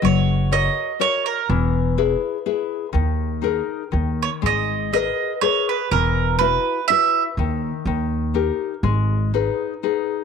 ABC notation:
X:1
M:3/4
L:1/16
Q:1/4=123
K:G#m
V:1 name="Mandolin"
c4 d4 c2 A2 | z12 | z8 z2 c2 | d4 d4 c2 B2 |
A4 B4 e3 z | z12 | z12 |]
V:2 name="Nylon-string guitar"
F,4 [FAc]4 [FAc]4 | E,4 [EGB]4 [EGB]4 | D,4 [DGA]4 D,4 | G,4 [GAB]4 [GAB]4 |
E,4 [EFB]4 [EFB]4 | D,4 D,4 [D=GA]4 | G,4 [DGB]4 [DGB]4 |]
V:3 name="Upright bass" clef=bass
F,,,8 z4 | E,,,8 z4 | D,,8 D,,4 | G,,,8 z4 |
E,,,8 z4 | D,,4 D,,8 | G,,,8 z4 |]